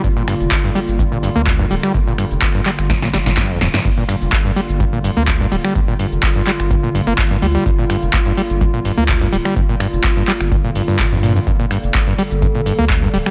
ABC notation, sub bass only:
X:1
M:4/4
L:1/16
Q:"Swing 16ths" 1/4=126
K:C
V:1 name="Sub bass" clef=bass
G,,, z2 F,,, z3 G,,,3 z D,,2 z D,,, z | G,,, z2 F,,, z3 G,,,3 z G,,,2 z D,,, z | G,,, z2 F,,, z3 G,,,3 z D,,2 z D,,, z | G,,, z2 F,,, z3 G,,,3 z G,,, z2 D,, z |
G,,, z2 F,,, z3 G,,,3 z D,,2 z D,,, z | G,,, z2 F,,, z3 G,,,3 z3 G,,2 z | G,,, z2 F,,, z3 G,,,3 z D,,2 z D,,, z |]